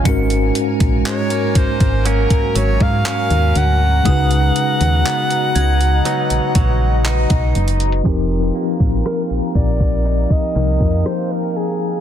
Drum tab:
HH |x-x-x-x-x-x-x-x-x-x-x---x-x-x---|x-x-x-x-x-x-x-x-x-x-x---x-x-xxxx|x-x-x-x-x-x-x-x-x-x-x---x-x-x---|
CP |--------x---------------x-------|--------x---------------x-------|--------------------------------|
SD |--------------------------------|--------------------------------|--------r---------------r-------|
BD |o-----o-----o-o---o---o---------|o-------------------o-----o-----|o-----o-----o-o---o---o---------|